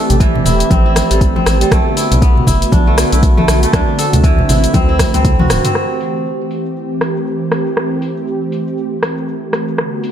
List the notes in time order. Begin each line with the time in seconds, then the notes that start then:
Already playing: E3 A3 C4 D4 E4 G4 A4
0.10 A1, closed hi-hat, low conga, cabasa
0.20 E3, kick, closed hi-hat, cabasa
0.36 low conga
0.46 E1 E4, open hi-hat, low conga, cabasa
0.60 closed hi-hat, cabasa
0.71 A1 C4, kick, closed hi-hat, high conga, cabasa
0.86 E4
0.96 cross-stick, open hi-hat, high conga, cabasa
1.11 A1 G3, closed hi-hat, cabasa
1.21 kick, closed hi-hat, cabasa
1.36 C4, high conga
1.46 A1, cross-stick, open hi-hat, cabasa
1.61 G3, closed hi-hat, cabasa
1.71 B1 D3 A3 B3 F#4, kick, cross-stick, closed hi-hat, high conga, cabasa
1.97 E4, open hi-hat, cabasa
2.12 B1, closed hi-hat, low conga, cabasa
2.22 B3, kick, closed hi-hat, cabasa
2.37 low conga
2.47 F#1 E4, kick, open hi-hat, low conga, cabasa
2.62 closed hi-hat, cabasa
2.72 B1 D4, kick, closed hi-hat, high conga, cabasa
2.87 A3
2.98 cross-stick, open hi-hat, cabasa
3.12 B1 E4, closed hi-hat, cabasa
3.23 kick, closed hi-hat, cabasa
3.37 A3, high conga
3.48 B1, cross-stick, open hi-hat, cabasa
3.63 A3, closed hi-hat, cabasa
3.73 D2 A3 C4 D4, kick, cross-stick, closed hi-hat, high conga, cabasa
3.99 A4, open hi-hat, cabasa
4.13 D2, closed hi-hat, low conga, cabasa
4.24 E3, kick, closed hi-hat, cabasa
4.39 low conga
4.49 A1 E4, open hi-hat, low conga, cabasa
4.64 closed hi-hat, cabasa
4.74 D2 C4, kick, closed hi-hat, high conga, cabasa
4.89 E4
4.99 kick, cross-stick, open hi-hat, high tom, high conga, cabasa
5.14 D2 C4, closed hi-hat, high tom, cabasa
5.25 kick, closed hi-hat, mid tom, cabasa
5.39 F#4, mid tom, high conga
5.50 D1, cross-stick, mid tom, open hi-hat, cabasa
5.65 C4, closed hi-hat, mid tom, cabasa
5.75 E3 A3 C4 G4, cross-stick, cabasa
6.00 open hi-hat, cabasa
6.16 cabasa
6.26 cabasa
6.51 open hi-hat, cabasa
6.66 cabasa
6.76 cabasa
7.01 cross-stick, open hi-hat, cabasa
7.16 cabasa
7.27 cabasa
7.52 cross-stick, open hi-hat, cabasa
7.67 cabasa
7.77 cross-stick, cabasa
8.02 open hi-hat, cabasa
8.17 cabasa
8.27 cabasa
8.52 open hi-hat, cabasa
8.67 cabasa
8.78 cabasa
9.03 cross-stick, open hi-hat, cabasa
9.18 cabasa
9.28 cabasa
9.53 cross-stick, open hi-hat, cabasa
9.68 cabasa
9.78 D3 B3 F#4, cross-stick, cabasa
10.04 open hi-hat, cabasa